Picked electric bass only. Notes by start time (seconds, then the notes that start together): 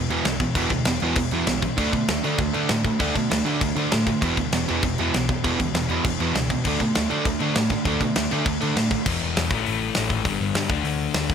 0.10 E2
0.26 B1
0.55 E1
0.71 D2
0.88 E1
1.03 E2
1.16 E1
1.32 E2
1.47 B1
1.78 D2
1.93 B2
2.09 D2
2.25 D3
2.40 D2
2.56 D3
2.70 A2
3.00 D2
3.16 B2
3.31 D2
3.45 D3
3.62 D2
3.76 D3
3.94 A2
4.22 E1
4.38 D2
4.53 E1
4.70 E2
4.84 E1
4.99 E2
5.14 B1
5.45 E1
5.60 D2
5.74 E1
5.89 E2
6.05 E1
6.20 E2
6.35 C#2
6.66 D2
6.80 B2
6.97 D2
7.12 D3
7.26 D2
7.41 D3
7.56 A2
7.85 D2
8.01 B2
8.17 D2
8.33 D3
8.46 D2
8.63 D3
8.76 A2
9.07 E1
9.23 E1
9.38 E2
9.51 A1
9.69 A1
9.98 A1
10.10 G#1
10.25 G1
10.41 G1
10.55 G2
10.70 D2
10.84 D2
11.15 D2
11.30 D2